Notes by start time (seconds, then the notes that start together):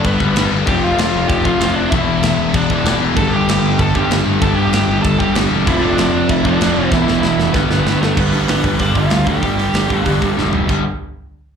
Already playing: G2 D3 G3 B3 D4 G4 B4
0.05 G1 B3 B4, kick, crash
0.19 G1 D3 G3, kick
0.25 G2
0.36 G1 G2 D3, snare, crash
0.40 G3
0.51 G1 G3 B3 D4 G4 B4
0.66 F1 F2 C3 F3 C4 F4 G4 A4 C5 G5, kick, crash
0.83 F1 F4 F5
0.98 F1 F4 F5, snare, crash
1.14 F1
1.28 F1 G4 G5, kick, crash
1.44 C3 F3 F4 F5, kick
1.48 F2
1.60 F1 F2 C3 F4 F5, snare, crash
1.64 F3
1.73 F1 D4 A4 C5 D5
1.78 F3 C4 F4
1.90 E1 E2 E3 B3 E4 E5, kick, crash
1.95 B2 E3 E4 G4
2.07 E1
2.22 E1 E4 E5, snare, crash
2.39 E1
2.53 E1 D4 D5, kick, crash
2.69 E1 B2 E3, kick
2.74 E2
2.84 E1 E2 B2 E3, snare, crash
2.99 E1 E4 G4
3.04 E3 B3
3.16 G1 G2 D3 G3 B3 D4 G4 A4 A5, kick, crash
3.21 G3
3.31 G1 G4
3.36 G5
3.48 G1 G4 G5, snare, crash
3.63 G1
3.79 G1 A4 A5, kick, crash
3.95 D3 G3 G4 G5, kick
3.99 G2
4.10 G1 G2 D3 G3, snare, crash
4.26 G1 G3 B3 D4 G4
4.40 G1 G2 D3 G3 B3 D4 A4 A5, kick, crash
4.46 G4
4.55 G1 G4 G5
4.70 G1 G5, snare, crash
4.74 G4
4.88 G1
5.02 G1 A4 A5, kick, crash
5.19 G1 G2 D3 G3 G4 G5, kick
5.35 G1 G2 D3, snare, crash
5.39 G3
5.51 E1 G3 B3 D4 G4
5.66 F1 F2 C3 F3 C4 E4 F4 A4 E5, kick, crash
5.82 F1 D4 D5
5.98 F1 D4 D5, snare, crash
6.13 F1
6.29 F1 E4 E5, kick, crash
6.43 F2 C3 F3 D4 D5, kick
6.59 F1 F2 C3 F3, snare, crash
6.76 F1 F3 C4 F4 A4
6.90 E1 E2 B2 E3 B3 E5, kick, snare
6.94 E4 G4
7.08 E1, snare
7.21 E1 E4 E5, snare
7.39 F1, snare
7.53 G1 G2 D3 G3 B3 B4, kick, snare
7.57 D4 G4
7.69 G1, snare
7.85 G1, snare
8.01 G1 A3 A4, snare
8.17 G1 G2 D3 G3 B3 B4, kick, crash
8.33 G1 G2 D3 G3, open hi-hat
8.48 G1 G2 D3 G3 B3 B4, snare, open hi-hat
8.64 G1 G2 D3 G3 B3 B4, kick, open hi-hat
8.79 G1 G2 D3 G3 D4 D5, kick, open hi-hat
8.95 G1 G2 D3 G3 F4 F5, kick, open hi-hat
9.10 D2 G2 D3 G3, snare, open hi-hat
9.26 D2 G2 D3 G3 G4 G5, kick, open hi-hat
9.42 G1 G2 D3 G3, kick, open hi-hat
9.59 G2 D3 G3, open hi-hat
9.74 G1 G2 D3 G3, snare, open hi-hat
9.90 G1 G2 D3 G3, kick, open hi-hat
10.01 G2 D3 G3 F5
10.06 G1 G2 D3, kick, open hi-hat
10.10 G3
10.22 G1 G2 D3 G3, kick, open hi-hat
10.38 F1 G2 D3 G3, snare
10.53 F1 G2 D3 G3, floor tom
10.69 G1 G2 D3 G3, kick, crash